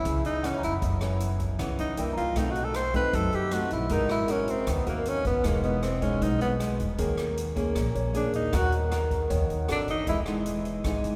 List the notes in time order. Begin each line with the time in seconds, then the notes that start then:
Already playing: E3 B3 C#4 E4 E5
0.04 C#2 C#3, kick, closed hi-hat
0.25 C#2 D#4, closed hi-hat
0.43 E3 B3 C#4 F#5, cross-stick, closed hi-hat
0.58 A#5
0.63 F#1 E4, closed hi-hat
0.72 B5
0.82 F#1 F#2, kick, closed hi-hat
1.01 E3 B3 C#4, cross-stick, closed hi-hat
1.20 closed hi-hat
1.40 kick, closed hi-hat
1.58 C#2 C#3 E3 B3 C#4, kick, cross-stick, closed hi-hat
1.78 C#2 D#4, closed hi-hat
1.97 C2 E3 A#3 D4 E4 G5, closed hi-hat
2.13 A#5
2.17 C2 F4, closed hi-hat
2.36 B1 B2 A3 C4 D#4, kick, cross-stick, closed hi-hat
2.51 F#4
2.55 closed hi-hat
2.64 A4
2.74 C5, cross-stick, closed hi-hat
2.94 A3 C4 D#4 B4, kick, closed hi-hat
3.13 F#2 F#3 A4, kick, closed hi-hat
3.33 F#2 G4, closed hi-hat
3.51 A3 C4 D#4 F#4, cross-stick, closed hi-hat
3.70 B1 E4, closed hi-hat
3.89 G#1 G#3 B3 D#4 F#4 A#4, kick, closed hi-hat
4.09 E4, cross-stick, closed hi-hat
4.28 B3 C#4 F#4 A#4, closed hi-hat
4.48 C4, closed hi-hat
4.67 D#2 D#3 B3, kick, cross-stick, closed hi-hat
4.86 D#2 A#3 B3 F#4 A#4, closed hi-hat
5.05 C#4, closed hi-hat
5.25 G#1 B3, kick, closed hi-hat
5.44 E1 E3 G#3 A#3 B3 D#4, kick, cross-stick, closed hi-hat
5.63 B3 D#5, closed hi-hat
5.83 C4, cross-stick, closed hi-hat
6.01 G#3 B3 C#4 D#4, kick, closed hi-hat
6.21 B1 B2 D#4, kick, closed hi-hat
6.41 B1 B3, closed hi-hat
6.59 G#3 B3 D#4, cross-stick, closed hi-hat
6.80 E1, closed hi-hat
6.98 D#2 D#3 A#3 C#4 G#4 A#4, kick, closed hi-hat
7.17 cross-stick, closed hi-hat
7.37 closed hi-hat
7.56 A#3 C#4 G#4, kick, closed hi-hat
7.75 A#1 A#2, kick, cross-stick, closed hi-hat
7.95 A#1 C#5, closed hi-hat
8.14 A#3 C#4 D4 G#4, closed hi-hat
8.33 D#2 D#4, closed hi-hat
8.52 D#2 D#3 B3 F#4 A#4, kick, cross-stick, closed hi-hat
8.72 closed hi-hat
8.91 B3 F#4 A#4, cross-stick, closed hi-hat
9.11 kick, closed hi-hat
9.30 D#2 D#3 C#5, kick, closed hi-hat
9.44 F#5
9.50 D#2, closed hi-hat
9.68 G#1 C4 D4 F#4 A4, cross-stick, closed hi-hat
9.88 G#1 D#4, closed hi-hat
10.07 E1 E3 G#3 B3 D#4 E4 D#5, kick, closed hi-hat
10.26 G#3 B3 D#4, cross-stick, closed hi-hat
10.46 closed hi-hat
10.65 closed hi-hat
10.84 G#1 E3 G#3 B3 D#4, kick, cross-stick, closed hi-hat
11.04 G#1, closed hi-hat